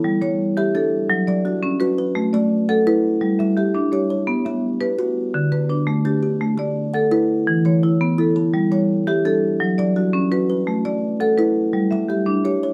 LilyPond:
<<
  \new Staff \with { instrumentName = "Marimba" } { \time 12/8 \key a \mixolydian \tempo 4. = 113 r8 cis''4. a'4. d''8 fis'4 b'4~ | b'8 d''4. b'4. e''8 g'4 cis''4~ | cis''8 e''4. r4. b'8 d'4 g'4~ | g'8 d''4. b'4. cis''8 e'4 a'4~ |
a'8 cis''4. a'4. d''8 fis'4 b'4~ | b'8 d''4. b'4. e''8 g'4 cis''4 | }
  \new Staff \with { instrumentName = "Marimba" } { \time 12/8 \key a \mixolydian g4 r8 g'4 r8 fis4 r8 cis'4 r8 | a4 r8 a'4 r8 g4 r8 d'4 r8 | b4 r8 b'4 r8 d4 r8 a4 r8 | a4 r8 a'4 r8 e4 r8 b4 r8 |
g4 r8 g'4 r8 fis4 r8 cis'4 r8 | a4 r8 a'4 r8 g4 r8 d'4 r8 | }
  \new Staff \with { instrumentName = "Kalimba" } { \time 12/8 \key a \mixolydian << { a'4 r8 e''4. r4 d'4. b'8~ | b'4 r8 fis''4. r4 e''4. cis''8~ | cis''4 r8 g'4. r4 b'4. g'8~ | g'4 r8 fis''4. r4 cis''4. a'8~ |
a'4 r8 e''4. r4 d'4. b'8~ | b'4 r8 fis''4. r4 e''4. cis''8 | } \\ { r8 g4 r8 d'4 r8 fis4 r8 fis'4 | r8 a4 r8 e'4 r8 g4 r8 g'4 | r8 b4 r8 fis'4 r8 d4 r8 d'4 | r8 a4 r8 e'4 r8 e4 r8 e'4 |
r8 g4 r8 d'4 r8 fis4 r8 fis'4 | r8 a4 r8 e'4 r8 g4 r8 g'4 | } >> }
>>